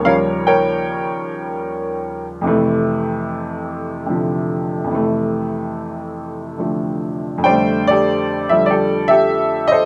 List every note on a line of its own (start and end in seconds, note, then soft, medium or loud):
0.00 2.44 D#2 soft
0.00 2.46 C#3 soft
0.05 2.48 F3 soft
0.05 2.49 G3 soft
0.05 0.46 A#4 medium
0.05 0.46 C#5 medium
0.05 0.14 F5 medium
0.47 2.25 A#4 medium
0.47 2.25 C#5 medium
0.47 2.24 G5 medium
2.41 4.83 F2 medium
2.41 4.05 C3 medium
2.46 4.90 E3 medium
2.46 4.91 A3 medium
4.06 4.86 C3 soft
4.06 4.89 D3 soft
4.06 4.90 F3 soft
4.84 7.36 F2 medium
4.84 7.43 C3 soft
4.91 7.45 E3 soft
4.91 6.59 A3 medium
6.58 7.41 D3 soft
6.58 7.45 F3 soft
6.58 7.45 A3 soft
7.38 9.85 F2 medium
7.43 8.48 D3 soft
7.43 8.50 G3 soft
7.43 8.65 C5 medium
7.43 7.86 D5 medium
7.43 7.84 G5 medium
7.49 9.85 A3 medium
7.87 8.69 G4 medium
7.87 8.69 A4 medium
7.87 8.52 D5 loud
8.49 9.85 D3 soft
8.49 9.85 F3 soft
8.49 9.85 G3 soft
8.49 8.67 E5 medium
8.66 9.11 D5 medium
8.70 9.09 G4 medium
8.70 9.09 A4 medium
9.08 9.85 G4 medium
9.08 9.71 A4 medium
9.08 9.71 E5 medium
9.68 9.85 D#5 loud
9.72 9.85 A4 medium
9.72 9.85 C5 medium